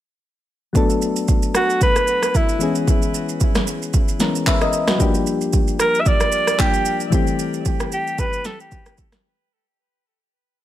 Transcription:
0.73 2.56 F#3 medium
0.73 2.57 A3 medium
0.73 2.57 B3 medium
0.73 2.58 D4 medium
0.73 kick loud
0.73 shaker medium
0.77 2.58 A4 medium
0.90 shaker medium
1.02 shaker medium
1.16 shaker medium
1.28 kick loud
1.28 shaker medium
1.43 shaker medium
1.55 1.80 F#4 medium
1.55 cross-stick loud
1.55 shaker medium
1.70 shaker medium
1.81 2.38 B4 loud
1.81 kick loud
1.81 shaker medium
1.96 cross-stick medium
1.96 shaker medium
2.08 shaker medium
2.23 cross-stick medium
2.23 shaker medium
2.35 2.77 E4 medium
2.35 kick loud
2.35 shaker medium
2.49 shaker soft
2.59 4.16 E3 medium
2.59 4.16 G#3 medium
2.59 4.17 B3 medium
2.59 4.17 C#4 medium
2.59 4.18 G#4 medium
2.59 shaker medium
2.75 shaker soft
2.88 kick loud
2.88 shaker medium
3.02 shaker medium
3.14 shaker medium
3.29 shaker medium
3.40 kick loud
3.40 shaker medium
3.55 cross-stick medium
3.55 snare medium
3.55 shaker soft
3.67 shaker medium
3.82 shaker medium
3.94 kick loud
3.94 shaker medium
4.08 shaker medium
4.19 4.99 E3 medium
4.19 5.00 G#3 medium
4.19 5.00 B3 medium
4.19 5.00 C#4 medium
4.19 4.47 A#4 medium
4.19 snare medium
4.19 shaker medium
4.35 shaker medium
4.47 4.61 B4 medium
4.47 4.61 E5 medium
4.47 kick loud
4.47 clap loud
4.47 shaker medium
4.61 4.87 A#4 medium
4.61 4.87 D#5 medium
4.61 cross-stick medium
4.61 shaker soft
4.73 shaker medium
4.88 5.14 F#4 medium
4.88 5.13 B4 medium
4.88 cross-stick loud
4.88 snare medium
4.88 shaker soft
4.98 6.55 F3 medium
4.98 6.55 G3 medium
4.98 6.56 A#3 medium
4.98 6.56 D4 medium
4.98 6.57 G4 medium
4.98 kick loud
4.98 shaker medium
5.14 shaker medium
5.27 shaker medium
5.41 shaker medium
5.53 kick loud
5.53 shaker medium
5.68 shaker soft
5.80 6.02 A#4 loud
5.80 cross-stick loud
5.80 shaker medium
5.95 shaker medium
6.01 6.09 E5 medium
6.06 6.62 D5 loud
6.06 kick loud
6.06 shaker medium
6.20 cross-stick medium
6.20 shaker medium
6.32 shaker medium
6.47 cross-stick medium
6.47 shaker medium
6.58 7.12 F3 soft
6.58 7.10 G3 soft
6.58 7.12 A#3 soft
6.58 7.13 D4 soft
6.58 7.01 G4 medium
6.58 7.13 G4 medium
6.58 kick loud
6.58 clap loud
6.58 shaker medium
6.74 shaker soft
6.85 shaker medium
7.00 shaker soft
7.10 9.20 E3 medium
7.10 9.20 G3 medium
7.10 9.21 A3 medium
7.10 9.21 C4 medium
7.10 kick loud
7.10 shaker medium
7.14 9.22 G4 medium
7.27 shaker medium
7.39 shaker medium
7.54 shaker medium
7.65 kick loud
7.65 shaker medium
7.80 cross-stick medium
7.80 shaker soft
7.92 8.21 G4 medium
7.92 shaker medium
8.07 shaker medium
8.18 8.48 B4 loud
8.18 kick loud
8.18 shaker medium
8.33 shaker medium
8.45 8.60 A4 loud
8.45 snare medium
8.45 shaker loud
8.60 8.96 G4 medium
8.60 shaker medium
8.72 kick loud
8.72 shaker medium
8.86 cross-stick medium
8.86 shaker soft
8.98 kick medium
8.98 shaker medium
9.12 cross-stick medium
9.12 snare medium
9.12 shaker medium

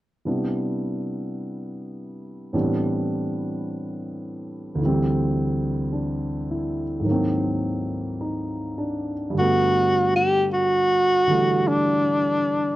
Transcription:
0.25 2.54 C3 soft
0.25 2.52 G3 soft
0.25 2.53 B3 soft
0.25 2.53 D4 soft
0.25 2.55 E4 soft
2.53 4.79 A2 soft
2.53 4.79 E3 soft
2.53 4.80 G3 soft
2.53 4.80 B3 soft
2.53 4.80 C4 soft
2.53 4.80 D4 soft
4.75 7.03 D2 soft
4.75 7.05 D3 soft
4.81 7.06 E3 soft
4.81 7.07 G3 soft
4.86 7.08 C4 soft
5.93 6.84 D4 soft
6.51 7.31 E4 soft
7.00 9.31 G#2 soft
7.00 9.33 D#3 soft
7.06 9.34 F#3 soft
7.06 9.36 A#3 soft
7.12 9.37 C4 soft
8.21 9.13 D#4 soft
8.78 9.59 D4 soft
9.30 12.76 G2 soft
9.30 11.26 D3 soft
9.39 11.29 A3 soft
9.39 12.76 B3 soft
9.39 10.11 F#4 medium
10.16 10.48 G4 medium
10.53 11.69 F#4 medium
11.27 12.76 D3 soft
11.27 12.76 E3 soft
11.27 12.76 G3 soft
11.27 12.76 A3 soft
11.68 12.76 D4 medium

